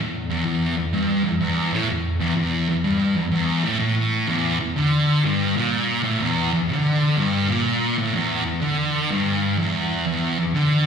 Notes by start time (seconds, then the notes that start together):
0.00 E2
0.30 E2
0.45 E2
0.77 E2
0.94 G2
1.24 E2
1.41 E2
1.73 A2
1.89 E2
2.21 E2
2.36 E2
2.69 E2
2.84 G2
3.16 E2
3.32 E2
3.64 A2
3.79 A2
4.27 E2
4.60 E2
4.76 D3
5.24 G2
5.56 A#2
6.03 A2
6.19 E2
6.52 E2
6.68 D3
7.16 G2
7.49 A#2
7.98 A2
8.14 E2
8.46 E2
8.61 D3
9.10 G2
9.58 E2
10.07 E2
10.39 E2
10.54 D3